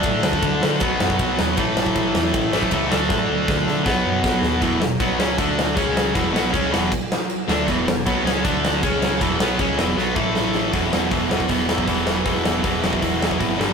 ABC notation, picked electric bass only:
X:1
M:4/4
L:1/8
Q:1/4=157
K:E
V:1 name="Picked electric bass" clef=bass
A,, =D,, D,, =D, B,,, F,, B,,, ^D,, | A,,, A,,, A,,, E,, A,,, A,,, C,, =D,, | A,, =D,, D,, =D, B,,, F,, B,,, ^D,, | E,,, E,,, B,,, C,, =D,,2 C,,2 |
E,,, B,,, C,, E,,, z3 =D,, | E,,, E,,, B,,, C,, =D,,2 C,,2 | E,,, B,,, C,, E,,, B,,, A,,,3 | E,,, E,,, E,,, E,,, E,,, E,,, E,,,2 |
E,,, E,,, E,,, E,,, E,,, E,,, G,,, =G,,, |]